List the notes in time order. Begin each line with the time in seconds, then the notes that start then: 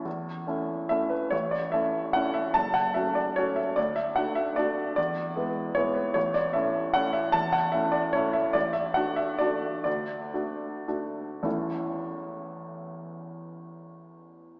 Already playing: A4 A5
0.05 E2
0.47 A3 C#4 E4
0.89 A3 C#4 E4 E5
1.10 B4
1.30 A1 C#5
1.51 D5
1.72 A3 C#4 E4 E5
2.13 A3 C#4 E4 F#5
2.34 E5
2.54 F#1 A5
2.74 F#5
2.94 A3 C#4 F#4 E5
3.15 D5
3.36 A3 C#4 F#4 C#5
3.56 E5
3.76 D2 D5
3.96 E5
4.16 A3 D4 F#4 F#5
4.35 E5
4.56 A3 D4 F#4 D5
4.96 E2 D5
5.36 G#3 B3 E4
5.75 G#3 B3 E4 C#5
5.95 B4
6.14 A1 C#5
6.34 D5
6.53 A3 C#4 E4 E5
6.94 A3 C#4 E4 F#5
7.13 E5
7.32 E2 A5
7.53 F#5
7.72 A3 C#4 E4 E5
7.92 D5
8.13 A3 C#4 E4 C#5
8.33 E5
8.53 A1 D5
8.73 E5
8.94 A3 D4 F#4 F#5
9.16 E5
9.39 A3 D4 F#4 D5
9.84 D2 D5
10.33 A3 D4 F#4
10.88 A3 D4 F#4
11.43 A1 E2 E3 A3 C#4 E4 A4